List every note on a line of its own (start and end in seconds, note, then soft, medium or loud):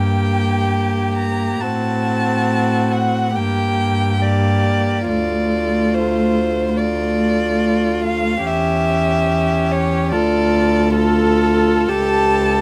0.00 1.57 G2 soft
0.00 1.64 A#3 soft
0.00 1.63 G4 soft
0.00 1.17 G5 soft
1.18 1.62 A#5 soft
1.60 3.37 A2 soft
1.60 3.36 C4 soft
1.60 3.35 F#4 soft
1.60 2.94 A5 soft
2.92 3.37 F#5 soft
3.35 5.08 G2 soft
3.35 4.21 A#3 soft
3.35 4.20 G4 soft
3.35 4.24 G5 soft
4.21 5.10 A#3 soft
4.21 5.06 G4 soft
4.21 5.08 D5 soft
5.07 8.45 D2 soft
5.07 6.77 A3 soft
5.07 6.74 F4 soft
5.07 5.95 D5 soft
5.93 6.79 C5 medium
6.77 8.43 A3 soft
6.77 8.43 F4 soft
6.77 8.04 D5 medium
8.05 8.48 F5 medium
8.46 10.13 E2 soft
8.46 10.14 C#4 soft
8.46 10.14 G4 soft
8.46 9.73 E5 medium
9.72 10.12 C#5 medium
10.12 11.89 D2 soft
10.12 10.94 F4 soft
10.12 10.94 A4 soft
10.12 10.93 D5 medium
10.95 11.90 F4 soft
10.95 11.86 A4 soft
10.95 11.90 A4 medium
11.87 12.61 C#2 soft
11.87 12.61 G4 soft
11.87 12.61 A4 soft
11.87 12.61 A5 medium